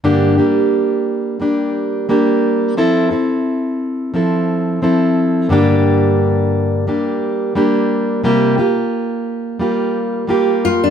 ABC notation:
X:1
M:4/4
L:1/16
Q:"Swing 16ths" 1/4=88
K:Gdor
V:1 name="Nylon-string guitar"
z16 | z16 | z16 | z12 z2 F D |]
V:2 name="Steel-string acoustic guitar"
[G,,D,G,B,DG]2 [G,B,DG]6 [G,B,DG]4 [G,B,DG]4 | [F,CEA]2 [CEA]6 [F,CEA]4 [F,CEA]4 | [G,,D,G,B,DG]8 [G,B,DG]4 [G,B,DG]4 | [C,G,B,FG]2 [B,FG]6 [G,B,FG]4 [G,B,FG]4 |]